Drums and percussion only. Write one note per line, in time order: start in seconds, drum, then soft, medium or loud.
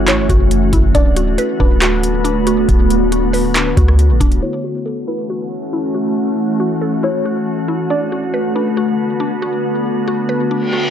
0.08 clap loud
0.08 closed hi-hat medium
0.29 kick loud
0.29 closed hi-hat medium
0.51 closed hi-hat medium
0.73 kick medium
0.73 closed hi-hat medium
0.95 kick loud
0.95 closed hi-hat medium
1.16 closed hi-hat medium
1.38 closed hi-hat medium
1.60 kick medium
1.82 clap loud
1.82 closed hi-hat medium
2.03 closed hi-hat medium
2.25 closed hi-hat medium
2.47 closed hi-hat medium
2.69 kick loud
2.69 closed hi-hat medium
2.90 closed hi-hat medium
3.12 closed hi-hat medium
3.34 open hi-hat medium
3.56 clap loud
3.56 closed hi-hat medium
3.77 kick loud
3.77 closed hi-hat medium
3.88 cross-stick medium
3.99 closed hi-hat medium
4.21 kick medium
4.21 closed hi-hat medium
4.32 closed hi-hat soft